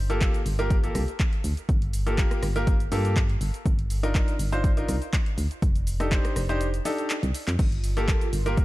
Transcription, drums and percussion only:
0.10 closed hi-hat soft
0.10 shaker soft
0.21 kick loud
0.21 clap loud
0.21 closed hi-hat medium
0.21 shaker soft
0.34 closed hi-hat soft
0.34 shaker soft
0.46 open hi-hat loud
0.46 shaker medium
0.59 closed hi-hat soft
0.59 shaker soft
0.70 kick loud
0.70 closed hi-hat medium
0.70 shaker soft
0.84 closed hi-hat soft
0.84 shaker soft
0.95 cross-stick medium
0.95 open hi-hat loud
0.95 shaker medium
1.08 closed hi-hat soft
1.08 shaker soft
1.20 kick loud
1.20 clap loud
1.20 closed hi-hat medium
1.20 shaker soft
1.33 closed hi-hat soft
1.44 open hi-hat loud
1.44 shaker medium
1.57 closed hi-hat soft
1.57 shaker soft
1.69 kick loud
1.69 closed hi-hat medium
1.69 shaker soft
1.82 closed hi-hat soft
1.93 open hi-hat loud
1.93 shaker medium
2.07 closed hi-hat soft
2.07 shaker soft
2.18 kick loud
2.18 clap loud
2.18 closed hi-hat medium
2.18 shaker soft
2.31 cross-stick medium
2.31 closed hi-hat soft
2.31 shaker soft
2.43 cross-stick medium
2.43 open hi-hat loud
2.43 shaker medium
2.56 closed hi-hat soft
2.56 shaker soft
2.67 kick loud
2.67 closed hi-hat medium
2.67 shaker soft
2.80 closed hi-hat soft
2.80 shaker soft
2.92 open hi-hat loud
2.92 shaker medium
3.05 closed hi-hat soft
3.05 shaker soft
3.16 kick loud
3.16 clap loud
3.16 closed hi-hat medium
3.16 shaker soft
3.29 closed hi-hat soft
3.41 open hi-hat loud
3.41 shaker medium
3.54 closed hi-hat soft
3.54 shaker soft
3.66 kick loud
3.66 closed hi-hat medium
3.66 shaker soft
3.79 closed hi-hat soft
3.90 open hi-hat loud
3.90 shaker medium
4.03 closed hi-hat soft
4.03 shaker soft
4.15 kick loud
4.15 clap loud
4.15 closed hi-hat medium
4.15 shaker soft
4.28 closed hi-hat soft
4.28 shaker soft
4.39 open hi-hat loud
4.39 shaker medium
4.53 closed hi-hat soft
4.53 shaker soft
4.64 kick loud
4.64 closed hi-hat medium
4.64 shaker soft
4.77 closed hi-hat soft
4.77 shaker soft
4.89 cross-stick medium
4.89 open hi-hat loud
4.89 shaker medium
5.02 closed hi-hat soft
5.02 shaker soft
5.13 kick loud
5.13 clap loud
5.13 closed hi-hat medium
5.13 shaker soft
5.26 closed hi-hat soft
5.38 open hi-hat loud
5.38 shaker medium
5.51 closed hi-hat soft
5.51 shaker soft
5.62 kick loud
5.62 closed hi-hat medium
5.62 shaker soft
5.75 closed hi-hat soft
5.75 shaker soft
5.87 open hi-hat loud
5.87 shaker medium
6.00 cross-stick medium
6.00 closed hi-hat soft
6.00 shaker soft
6.12 kick loud
6.12 clap loud
6.12 closed hi-hat medium
6.12 shaker soft
6.25 cross-stick medium
6.25 closed hi-hat soft
6.25 shaker soft
6.36 cross-stick medium
6.36 open hi-hat loud
6.36 shaker medium
6.49 closed hi-hat soft
6.49 shaker soft
6.61 closed hi-hat medium
6.61 shaker soft
6.74 closed hi-hat soft
6.74 shaker soft
6.85 open hi-hat loud
6.85 shaker medium
6.98 closed hi-hat soft
6.98 shaker soft
7.10 clap loud
7.10 closed hi-hat medium
7.10 shaker soft
7.23 closed hi-hat soft
7.23 shaker soft
7.34 open hi-hat loud
7.34 shaker medium
7.48 clap medium
7.48 closed hi-hat soft
7.48 shaker soft
7.59 kick loud
7.59 closed hi-hat medium
7.59 crash medium
7.59 shaker soft
7.72 closed hi-hat soft
7.84 open hi-hat loud
7.84 shaker medium
7.97 closed hi-hat soft
7.97 shaker soft
8.08 kick loud
8.08 clap loud
8.08 closed hi-hat medium
8.08 shaker soft
8.21 closed hi-hat soft
8.21 shaker soft
8.33 open hi-hat loud
8.33 shaker medium
8.46 closed hi-hat soft
8.46 shaker soft
8.57 kick loud
8.57 closed hi-hat medium
8.57 shaker soft

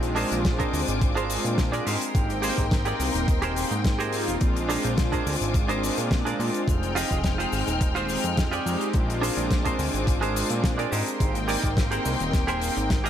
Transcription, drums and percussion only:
0.03 closed hi-hat medium
0.03 cabasa soft
0.16 open hi-hat loud
0.16 cabasa medium
0.32 closed hi-hat medium
0.32 cabasa soft
0.45 kick loud
0.45 snare loud
0.45 closed hi-hat medium
0.45 cabasa medium
0.60 kick medium
0.60 closed hi-hat medium
0.60 cabasa soft
0.73 open hi-hat loud
0.73 cabasa medium
0.88 closed hi-hat medium
0.88 cabasa medium
1.02 kick loud
1.02 closed hi-hat medium
1.02 cabasa medium
1.17 closed hi-hat soft
1.17 cabasa soft
1.30 open hi-hat loud
1.30 cabasa medium
1.45 closed hi-hat medium
1.45 cabasa soft
1.58 kick loud
1.58 snare loud
1.58 closed hi-hat medium
1.58 cabasa medium
1.73 closed hi-hat medium
1.73 cabasa soft
1.87 open hi-hat loud
1.87 cabasa medium
2.01 closed hi-hat medium
2.01 cabasa soft
2.15 kick loud
2.15 closed hi-hat medium
2.15 cabasa medium
2.30 closed hi-hat soft
2.30 cabasa soft
2.43 open hi-hat loud
2.43 cabasa medium
2.58 kick medium
2.58 closed hi-hat soft
2.58 cabasa medium
2.71 kick loud
2.71 snare loud
2.71 closed hi-hat medium
2.71 cabasa medium
2.85 closed hi-hat medium
2.85 cabasa soft
3.00 open hi-hat loud
3.00 cabasa medium
3.15 closed hi-hat medium
3.15 cabasa soft
3.28 kick loud
3.28 closed hi-hat medium
3.28 cabasa medium
3.42 closed hi-hat medium
3.42 cabasa soft
3.56 open hi-hat loud
3.56 cabasa medium
3.71 closed hi-hat medium
3.71 cabasa soft
3.84 kick loud
3.84 snare loud
3.84 closed hi-hat medium
3.84 cabasa medium
4.00 closed hi-hat medium
4.00 cabasa soft
4.12 open hi-hat loud
4.12 cabasa medium
4.28 closed hi-hat soft
4.28 cabasa medium
4.41 kick loud
4.41 closed hi-hat medium
4.41 cabasa medium
4.56 closed hi-hat medium
4.56 cabasa soft
4.69 open hi-hat loud
4.69 cabasa medium
4.84 closed hi-hat medium
4.84 cabasa soft
4.98 kick loud
4.98 snare loud
4.98 closed hi-hat medium
4.98 cabasa medium
5.13 kick medium
5.13 closed hi-hat medium
5.13 cabasa soft
5.27 open hi-hat loud
5.27 cabasa medium
5.42 closed hi-hat medium
5.42 cabasa medium
5.54 kick loud
5.54 closed hi-hat medium
5.54 cabasa medium
5.69 closed hi-hat soft
5.69 cabasa soft
5.83 open hi-hat loud
5.83 cabasa medium
5.98 closed hi-hat medium
5.98 cabasa medium
6.11 kick loud
6.11 snare loud
6.11 closed hi-hat medium
6.11 cabasa medium
6.26 closed hi-hat medium
6.26 cabasa soft
6.40 open hi-hat loud
6.40 cabasa medium
6.54 closed hi-hat medium
6.54 cabasa soft
6.68 kick loud
6.68 closed hi-hat medium
6.68 cabasa medium
6.83 closed hi-hat medium
6.83 cabasa soft
6.96 open hi-hat loud
6.96 cabasa medium
7.11 kick medium
7.11 closed hi-hat medium
7.11 cabasa medium
7.24 kick loud
7.24 snare loud
7.24 closed hi-hat medium
7.24 cabasa medium
7.40 closed hi-hat medium
7.40 cabasa soft
7.53 open hi-hat medium
7.53 cabasa medium
7.67 closed hi-hat medium
7.67 cabasa medium
7.81 kick loud
7.81 closed hi-hat medium
7.81 cabasa medium
7.96 closed hi-hat soft
7.96 cabasa soft
8.09 open hi-hat loud
8.09 cabasa medium
8.24 closed hi-hat medium
8.24 cabasa medium
8.37 kick loud
8.37 snare loud
8.37 closed hi-hat medium
8.37 cabasa medium
8.53 closed hi-hat medium
8.53 cabasa soft
8.66 open hi-hat loud
8.66 cabasa medium
8.81 closed hi-hat medium
8.81 cabasa soft
8.93 kick loud
8.93 closed hi-hat medium
8.93 cabasa medium
9.10 closed hi-hat medium
9.10 cabasa soft
9.23 open hi-hat loud
9.23 cabasa medium
9.38 closed hi-hat medium
9.38 cabasa soft
9.51 kick loud
9.51 snare loud
9.51 closed hi-hat medium
9.51 cabasa medium
9.65 kick medium
9.65 closed hi-hat medium
9.65 cabasa soft
9.79 open hi-hat loud
9.79 cabasa medium
9.94 closed hi-hat medium
9.94 cabasa medium
10.07 kick loud
10.07 closed hi-hat medium
10.07 cabasa medium
10.22 closed hi-hat medium
10.22 cabasa soft
10.36 open hi-hat loud
10.36 cabasa medium
10.50 closed hi-hat medium
10.50 cabasa medium
10.64 kick loud
10.64 snare loud
10.64 closed hi-hat medium
10.64 cabasa medium
10.79 closed hi-hat medium
10.79 cabasa soft
10.92 open hi-hat loud
10.92 cabasa medium
11.07 closed hi-hat medium
11.07 cabasa medium
11.20 kick loud
11.20 closed hi-hat medium
11.20 cabasa medium
11.35 closed hi-hat medium
11.35 cabasa soft
11.49 open hi-hat loud
11.49 cabasa medium
11.63 kick medium
11.63 closed hi-hat medium
11.63 cabasa soft
11.77 kick loud
11.77 snare loud
11.77 closed hi-hat medium
11.77 cabasa medium
11.92 closed hi-hat medium
11.92 cabasa soft
12.05 open hi-hat loud
12.05 cabasa medium
12.20 closed hi-hat medium
12.20 cabasa medium
12.34 kick loud
12.34 snare medium
12.34 closed hi-hat medium
12.34 cabasa medium
12.48 closed hi-hat medium
12.48 cabasa soft
12.62 open hi-hat loud
12.62 cabasa medium
12.77 closed hi-hat medium
12.77 cabasa soft
12.90 kick loud
12.90 snare loud
12.90 closed hi-hat medium
12.90 cabasa medium
13.06 closed hi-hat medium
13.06 cabasa soft

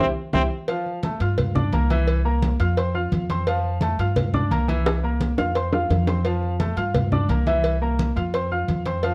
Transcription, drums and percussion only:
0.33 low bongo loud
0.33 high conga loud
0.68 cowbell loud
0.68 high conga soft
0.86 high conga soft
1.03 cowbell medium
1.03 high conga loud
1.20 cowbell medium
1.20 high conga soft
1.38 cowbell loud
1.38 high conga soft
1.38 low conga medium
1.55 high conga soft
1.55 low conga medium
1.72 cowbell medium
1.72 high conga medium
1.90 cowbell medium
1.90 high conga medium
2.07 cowbell loud
2.07 high conga soft
2.25 high conga soft
2.42 cowbell medium
2.42 high conga loud
2.60 cowbell medium
2.60 high conga soft
2.77 cowbell loud
2.77 high conga soft
2.95 high conga soft
3.12 cowbell medium
3.12 high conga loud
3.30 cowbell medium
3.30 high conga medium
3.47 cowbell loud
3.47 high conga soft
3.64 high conga soft
3.81 cowbell medium
3.81 high conga loud
3.98 cowbell medium
3.98 high conga soft
4.16 cowbell loud
4.16 high conga soft
4.16 low conga medium
4.34 high conga soft
4.34 low conga medium
4.51 cowbell medium
4.51 high conga medium
4.68 cowbell medium
4.68 high conga medium
4.86 cowbell loud
4.86 high bongo loud
4.86 high conga soft
5.03 high conga soft
5.21 cowbell medium
5.21 high conga medium
5.38 cowbell medium
5.38 low bongo loud
5.38 high conga soft
5.56 cowbell loud
5.56 high conga soft
5.73 low bongo loud
5.73 high conga soft
5.91 cowbell medium
5.91 low bongo medium
5.91 high conga medium
6.07 cowbell medium
6.07 low bongo loud
6.25 cowbell loud
6.25 high conga soft
6.42 high conga soft
6.60 cowbell medium
6.60 high conga loud
6.77 cowbell medium
6.77 high conga soft
6.95 cowbell loud
6.95 high conga soft
6.95 low conga medium
7.12 high conga soft
7.12 low conga medium
7.29 cowbell medium
7.29 high conga medium
7.46 cowbell medium
7.46 high conga medium
7.64 cowbell loud
7.64 high conga soft
7.82 high conga soft
7.99 cowbell medium
7.99 high conga medium
8.16 cowbell medium
8.16 high conga soft
8.34 cowbell loud
8.34 high conga soft
8.51 high conga soft
8.68 cowbell medium
8.68 high conga medium
8.85 cowbell medium
8.85 high conga medium
9.03 cowbell loud
9.03 high conga soft

